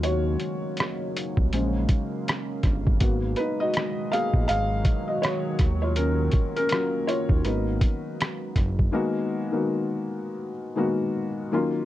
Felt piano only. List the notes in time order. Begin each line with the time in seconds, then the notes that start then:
Already playing: F#3 C#4 F4
0.03 F#4 C#5
1.53 G#3 C#4 C5
3.01 A#3 B3 F#4
3.37 D#4 B4
3.60 F#4 D#5
4.12 A#3 B3 F#4 G#4 F5
4.48 G#4 F5
5.08 F#4 D#5
5.22 F#4 C#5
5.82 F4 C#5
5.96 C#4 A#4
6.56 C#4 A#4
6.70 F#3 C#4 F4
7.07 F4 C#5
7.44 B3 D#4 F#4 A#4 B4
8.91 D#3 G#3 A#3 B3 F#4
9.51 D#3 G#3 A#3 B3 F#4
10.76 D#3 G#3 A#3 B3 F#4
11.52 D#3 F#3 A#3 C#4 F4